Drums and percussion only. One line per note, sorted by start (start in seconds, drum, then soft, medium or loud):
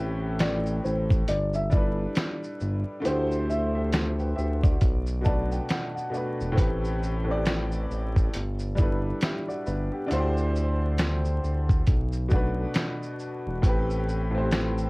0.39 snare loud
0.39 closed hi-hat medium
0.39 shaker medium
0.66 shaker soft
0.85 shaker soft
1.10 kick medium
1.10 shaker soft
1.28 closed hi-hat medium
1.28 shaker medium
1.54 shaker medium
1.71 kick medium
1.71 shaker medium
2.15 snare loud
2.15 closed hi-hat medium
2.15 shaker medium
2.44 shaker soft
2.60 shaker soft
3.05 closed hi-hat medium
3.05 shaker medium
3.31 shaker soft
3.50 shaker medium
3.93 snare loud
3.93 closed hi-hat medium
3.93 shaker medium
4.19 shaker soft
4.38 shaker soft
4.63 kick loud
4.63 shaker medium
4.81 kick loud
4.81 closed hi-hat medium
4.81 shaker medium
5.07 shaker medium
5.25 kick medium
5.25 shaker soft
5.52 shaker soft
5.69 snare medium
5.69 closed hi-hat medium
5.69 shaker medium
5.97 shaker soft
6.14 shaker soft
6.40 shaker soft
6.57 kick loud
6.57 closed hi-hat medium
6.57 shaker medium
6.84 shaker soft
7.03 shaker medium
7.46 snare loud
7.46 closed hi-hat medium
7.46 shaker medium
7.72 shaker medium
7.91 shaker soft
8.16 kick medium
8.16 shaker soft
8.34 closed hi-hat medium
8.34 shaker medium
8.59 shaker medium
8.77 kick medium
8.77 shaker medium
9.21 snare loud
9.21 closed hi-hat medium
9.21 shaker medium
9.50 shaker soft
9.66 shaker medium
10.11 closed hi-hat medium
10.11 shaker medium
10.37 shaker soft
10.56 shaker medium
10.98 snare loud
10.98 closed hi-hat medium
10.98 shaker medium
11.25 shaker soft
11.44 shaker soft
11.69 kick medium
11.69 shaker soft
11.87 kick medium
11.87 closed hi-hat medium
11.87 shaker medium
12.12 shaker medium
12.30 kick medium
12.30 shaker medium
12.74 snare loud
12.74 closed hi-hat medium
12.74 shaker medium
13.03 shaker soft
13.19 shaker medium
13.63 kick loud
13.63 closed hi-hat medium
13.63 shaker medium
13.90 shaker medium
14.09 shaker medium
14.51 snare loud
14.51 closed hi-hat medium
14.51 shaker medium
14.78 shaker medium